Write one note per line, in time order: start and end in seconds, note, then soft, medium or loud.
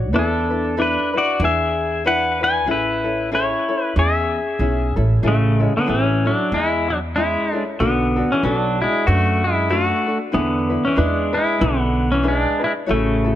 0.00 0.13 A1 medium
0.00 0.11 D4 soft
0.00 0.14 F#4 soft
0.00 0.13 C#5 medium
0.13 0.96 E2 medium
0.13 0.50 D4 medium
0.13 0.74 D4 medium
0.13 0.50 E4 medium
0.13 0.50 A4 medium
0.13 0.49 B4 medium
0.19 0.82 A4 medium
0.50 0.76 D4 soft
0.50 0.76 E4 soft
0.50 0.77 B4 soft
0.77 1.14 D4 medium
0.77 1.13 D4 medium
0.77 1.14 E4 medium
0.77 1.14 A4 medium
0.77 1.12 B4 medium
0.82 1.17 B4 medium
1.14 1.40 D4 soft
1.14 1.41 E4 medium
1.14 1.41 F#4 medium
1.14 1.41 B4 medium
1.18 1.44 D5 medium
1.40 2.69 E2 loud
1.40 2.04 D4 medium
1.40 2.05 E4 medium
1.40 2.04 G#4 medium
1.40 2.04 B4 medium
1.44 2.02 G#4 medium
1.44 2.08 E5 medium
2.04 2.41 D4 medium
2.04 2.40 E4 medium
2.04 2.41 G#4 medium
2.04 2.40 B4 medium
2.04 2.44 F#5 medium
2.41 2.67 D4 soft
2.41 2.67 E4 soft
2.41 2.67 B4 soft
2.41 2.68 B4 medium
2.41 2.68 G#5 loud
2.66 3.52 A1 medium
2.66 3.05 C#4 medium
2.66 3.04 E4 medium
2.66 3.04 G#4 medium
2.66 3.03 A4 medium
2.71 3.30 E4 medium
2.71 3.29 B4 medium
3.04 3.31 C#4 soft
3.04 3.31 E4 soft
3.04 3.31 A4 medium
3.31 3.69 C#4 medium
3.31 3.68 E4 medium
3.31 3.94 E4 medium
3.31 3.69 G#4 medium
3.31 3.67 A4 medium
3.31 3.84 C#5 medium
3.68 3.95 C#4 soft
3.68 3.96 E4 soft
3.68 3.96 A4 medium
3.84 3.99 B4 medium
3.96 4.38 E2 medium
3.96 4.60 C#4 medium
3.96 4.60 E4 medium
3.96 4.59 G#4 medium
3.96 4.94 G#4 medium
3.96 4.94 E5 medium
4.59 4.93 B1 medium
4.59 4.97 C#4 medium
4.59 4.96 E4 medium
4.59 4.96 G#4 medium
4.96 5.21 A1 medium
4.96 5.22 C#4 soft
4.96 5.22 E4 soft
4.96 5.23 A4 medium
5.23 5.65 A1 medium
5.23 5.60 C#4 medium
5.23 5.59 E4 medium
5.23 5.60 G#4 medium
5.23 5.58 A4 medium
5.28 5.73 C#3 medium
5.28 5.73 A3 medium
5.59 5.86 C#4 soft
5.59 5.86 E4 soft
5.59 5.86 A4 soft
5.77 5.89 D3 medium
5.77 5.88 B3 medium
5.86 6.30 A1 medium
5.86 6.24 C#4 medium
5.86 6.26 C#4 medium
5.86 6.24 E4 medium
5.86 6.23 G#4 medium
5.86 6.24 A4 medium
5.91 6.23 E3 medium
6.25 6.54 D4 medium
6.25 6.52 E4 soft
6.25 6.52 A4 medium
6.29 6.52 F#3 medium
6.52 7.35 E2 medium
6.52 7.16 E4 medium
6.52 6.91 E4 medium
6.52 7.15 G#4 medium
6.56 6.88 G#3 medium
6.90 6.99 F#3 medium
6.90 6.97 D4 medium
7.16 7.63 G#3 medium
7.16 7.53 C#4 medium
7.16 7.62 E4 medium
7.16 7.52 E4 medium
7.16 7.53 G#4 medium
7.52 7.79 C#4 soft
7.52 7.80 E4 soft
7.52 7.79 A4 soft
7.79 8.21 B1 medium
7.79 8.27 D3 medium
7.79 8.31 B3 medium
7.79 8.16 D4 medium
7.79 8.16 F#4 medium
7.79 8.15 A4 medium
7.79 8.16 B4 medium
8.16 8.44 D4 soft
8.16 8.44 F#4 soft
8.16 8.43 A4 soft
8.32 8.44 E3 medium
8.32 8.45 C#4 medium
8.43 8.85 B1 medium
8.43 8.79 F#3 medium
8.43 8.82 D4 medium
8.43 8.80 D4 medium
8.43 8.79 F#4 medium
8.43 8.81 A4 medium
8.43 8.80 B4 medium
8.81 9.07 G#3 medium
8.81 9.06 D4 soft
8.81 9.06 E4 medium
8.81 9.07 F#4 soft
9.07 9.90 F#2 loud
9.07 9.42 A3 medium
9.07 9.70 D4 medium
9.07 9.45 F#4 medium
9.07 9.69 F#4 medium
9.07 9.69 B4 medium
9.44 9.70 G#3 medium
9.44 9.69 E4 medium
9.69 10.19 A3 medium
9.69 10.07 D4 medium
9.69 10.07 F#4 medium
9.69 10.17 F#4 medium
9.69 10.05 A4 medium
9.69 10.06 B4 medium
10.06 10.31 D4 soft
10.06 10.32 F#4 soft
10.06 10.33 A4 soft
10.32 10.76 E2 medium
10.32 10.86 B3 medium
10.32 10.70 D4 medium
10.32 10.69 E4 medium
10.32 10.70 G#4 medium
10.32 10.68 B4 medium
10.37 10.83 D3 medium
10.70 10.95 D4 soft
10.70 10.95 E4 soft
10.70 10.96 B4 medium
10.85 10.99 E3 medium
10.85 10.99 C#4 medium
10.95 11.39 E2 medium
10.95 11.33 D4 medium
10.95 11.36 D4 medium
10.95 11.33 E4 medium
10.95 11.34 G#4 medium
10.95 11.32 B4 medium
11.00 11.34 G#3 medium
11.33 11.58 D4 soft
11.33 11.59 E4 soft
11.33 11.63 E4 medium
11.33 11.60 B4 medium
11.37 11.61 G#3 medium
11.58 12.44 B1 loud
11.58 12.14 B3 medium
11.58 12.22 D4 medium
11.58 12.23 E4 medium
11.58 12.22 G#4 medium
11.58 12.23 B4 medium
11.64 12.10 D3 medium
12.12 12.26 E3 medium
12.12 12.26 C#4 medium
12.23 12.61 D4 medium
12.23 12.60 E4 medium
12.23 12.61 G#4 medium
12.23 12.58 B4 medium
12.28 12.62 G#3 medium
12.28 12.61 D4 medium
12.60 12.86 D4 soft
12.60 12.87 E4 soft
12.60 12.88 B4 soft
12.64 12.73 G#3 medium
12.64 12.71 E4 medium
12.86 13.31 A1 medium
12.86 13.25 E4 medium
12.86 13.25 F#4 medium
12.86 13.23 A4 medium
12.86 13.25 C#5 medium
12.91 13.35 C#3 medium
12.91 13.35 A3 medium
13.24 13.35 E4 soft
13.24 13.35 F#4 soft
13.24 13.35 A4 soft